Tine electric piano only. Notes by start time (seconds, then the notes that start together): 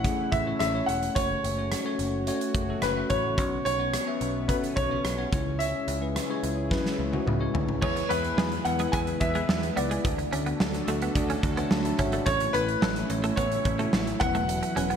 Already playing: A3 C#4 E4 C#5
0.04 A3 C#4 E4 G#4
0.46 A3 C#4 E4 C#5
0.74 A3 C#4 E4 C#5
1.16 A3 C#4 F#4 C#5
1.57 A3 C#4 F#4 C#5
1.85 A3 C#4 F#4 C#5
2.27 A3 C#4 F#4 C#5
2.69 A3 C#4 F#4 A4
2.96 A3 C#4 F#4 E5
3.37 B3 C#4 F#4 C#5
3.78 B3 C#4 F#4 C#5
4.06 B3 C#4 F#4 E5
4.48 B3 C#4 F#4 A4
4.90 B3 C#4 F#4 C#5
5.18 B3 C#4 F#4 C#5
5.31 G#3 C#4 E4 C#5
6.01 G#3 C#4 E4 B4
6.29 G#3 C#4 E4 C#5
6.70 G#3 C#4 E4 B4
7.12 G#3 C#4 E4 F#4
7.39 G#3 C#4 E4 C#5
7.81 G#3 B3 E4 B4
8.09 G#3 B3 E4 G#4
8.65 G#3 B3 E4 B4
8.93 G#3 B3 E4 B4
9.35 G#3 B3 E4 B4
9.76 G#3 B3 E4 B4
10.04 A3 D4 F#4 D5
10.31 A3 D4 F#4 D5
10.87 A3 D4 F#4 A4
11.15 A3 D4 F#4 D5
11.57 A3 D4 F#4 C#5
11.71 F#5 A5 B5
11.85 E5 A5
11.99 C#5 E5 F#5
12.13 A4 D5
12.26 A3 C#4 E4 C#5
12.53 A3 C#4 E4 C#5
13.09 A3 C#4 E4 C#5
13.36 A3 C#4 E4 C#5
13.79 A3 C#4 E4 F#4
14.21 F#3 B3 E4 B4
14.76 F#3 B3 E4 B4